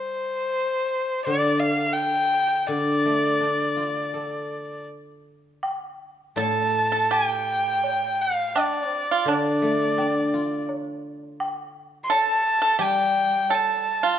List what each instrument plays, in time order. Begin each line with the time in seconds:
Already playing: guzheng G3, erhu C5
1.25 guzheng D3, erhu D5
1.59 erhu F5
1.93 erhu G5
2.66 guzheng D3, erhu D5
3.05 guzheng A3
3.40 guzheng D4
3.77 guzheng F4
4.14 guzheng A4
5.63 high woodblock
6.36 guzheng A2, pipa A4, erhu A5, low woodblock
6.92 pipa A4
7.11 pipa G4, erhu G5, high woodblock
7.83 low woodblock
8.22 erhu F5
8.55 pipa D4, high woodblock
8.60 erhu D5
8.87 pipa C4
9.11 pipa F4
9.25 guzheng D3, pipa D4, low woodblock
9.31 erhu D5
9.62 guzheng A3
9.98 guzheng D4, high woodblock
10.34 guzheng F4
10.69 low woodblock
11.40 high woodblock
12.04 erhu C6
12.10 pipa A4, erhu A5, low woodblock
12.62 pipa A4
12.79 guzheng G3, pipa G4, erhu G5, high woodblock
13.49 pipa A4, low woodblock
13.55 erhu A5
14.03 pipa F4